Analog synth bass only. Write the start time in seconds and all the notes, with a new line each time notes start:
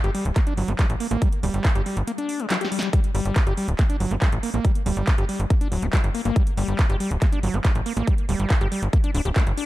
0.04 G1
0.25 D1
0.57 G1
0.68 G1
0.90 A1
1.11 A1
1.43 D1
1.54 G1
1.75 G1
1.97 G1
3.15 G1
3.25 G1
3.47 G1
3.68 D1
4.00 G1
4.11 G1
4.32 A1
4.54 A1
4.86 D1
4.97 G1
5.18 G1
5.40 G1
5.72 D1
5.82 D1
6.04 G1
6.25 G1
6.57 G1
6.68 G1
6.90 G1
7.11 D1
7.43 G1
7.54 G1
7.75 A1
7.97 A1
8.29 D1
8.40 G1
8.61 G1
8.82 G1
9.15 D1
9.25 D1
9.47 G1